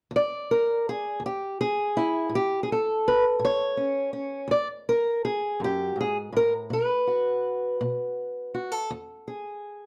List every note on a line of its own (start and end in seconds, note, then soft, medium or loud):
0.11 0.78 E2 medium
0.16 1.24 D5 medium
0.51 0.87 A#4 medium
0.89 1.24 G#4 medium
1.20 1.87 E2 medium
1.26 1.60 G4 medium
1.61 2.33 G#4 medium
1.97 2.33 E4 medium
2.29 2.97 A2 medium
2.35 2.63 G4 medium
2.63 2.69 G#4 medium
2.72 3.77 A4 medium
3.08 3.24 B4 medium
3.39 4.06 A2 medium
3.45 4.51 C#5 loud
3.77 4.12 C#4 soft
4.13 4.51 C#4 soft
4.48 5.15 E2 medium
4.48 4.67 D5 medium
4.89 5.24 A#4 medium
5.25 5.61 G#4 medium
5.60 5.95 F#2 medium
5.64 5.99 G4 medium
5.96 6.32 G#2 soft
6.01 6.17 G#4 medium
6.32 6.70 A2 medium
6.37 6.53 A#4 medium
6.70 7.36 B2 medium
6.70 8.54 B4 medium
7.07 8.53 F#4 soft
7.81 8.46 B2 medium
8.54 8.72 F#4 soft
8.72 8.90 A4 soft
8.90 9.56 E2 medium
9.28 9.86 G#4 soft